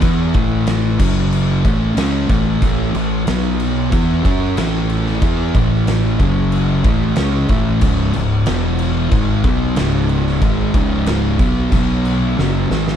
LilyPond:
<<
  \new Staff \with { instrumentName = "Distorted electric guitar" } { \clef bass \time 4/4 \key a \lydian \tempo 4 = 92 <e b e'>8 <a, e a>4 <fis, cis fis>4 <a, e a>8 <cis gis cis'>8 <a, e a>8 | <a, e a>8 <a, e>8 <b, fis b>4 <e b e'>8 <fis cis' fis'>8 <a, e a>4 | <e b e'>8 <a, e a>4 <fis, cis fis>4 <a, e a>8 <cis gis cis'>8 <a, e a>8 | <cis, gis, cis>8 <cis, gis,>8 <e, b, e>4 <gis, dis gis>8 <b, fis b>8 <cis, gis, cis>4 |
<gis, dis gis>8 <cis, gis, cis>4 <b, fis b>8 <b, fis b>4 <fis, cis fis>8 <gis, dis gis>8 | }
  \new Staff \with { instrumentName = "Distorted electric guitar" } { \clef bass \time 4/4 \key a \lydian <e b e'>8 <a, e a>4 <fis, cis fis>4 <a, e a>8 <cis gis cis'>8 <a, e a>8 | <a, e a>8 <a, e>8 <b, fis b>4 <e b e'>8 <fis cis' fis'>8 <a, e a>4 | <e b e'>8 <a, e a>4 <fis, cis fis>4 <a, e a>8 <cis gis cis'>8 <a, e a>8 | <cis, gis, cis>8 <cis, gis,>8 <e, b, e>4 <gis, dis gis>8 <b, fis b>8 <cis, gis, cis>4 |
<gis, dis gis>8 <cis, gis, cis>4 <b, fis b>8 <b, fis b>4 <fis, cis fis>8 <gis, dis gis>8 | }
  \new Staff \with { instrumentName = "Fingered electric bass" } { \clef bass \time 4/4 \key a \lydian e,8 a,,4 fis,,4 a,,8 cis,8 a,,8 | a,,8 a,,8 b,,4 e,8 fis,8 a,,4 | e,8 a,,4 fis,,4 a,,8 cis,8 a,,8 | cis,,8 cis,,8 e,,4 gis,,8 b,,8 cis,,4 |
gis,,8 cis,,4 b,,8 b,,4 fis,,8 gis,,8 | }
  \new DrumStaff \with { instrumentName = "Drums" } \drummode { \time 4/4 <cymc bd>8 <cymc bd>8 <cymc sn>8 <cymc bd>8 cymc8 <cymc bd>8 <cymc sn>8 <cymc bd>8 | <cymc bd>8 cymc8 <cymc sn>8 cymc8 <cymc bd>8 <cymc bd>8 <cymc sn>8 cymc16 sn16 | <cymc bd>8 <cymc bd>8 <cymc sn>8 <cymc bd>8 cymc8 <cymc bd>8 <cymc sn>8 <cymc bd>8 | <cymc bd>8 cymc8 <cymc sn>8 cymc8 <cymc bd>8 <cymc bd>8 <cymc sn>8 cymc16 sn16 |
<cymc bd>8 <cymc bd>8 <cymc sn>8 <cymc bd>8 <cymc bd>8 cymc8 sn8 sn16 sn16 | }
>>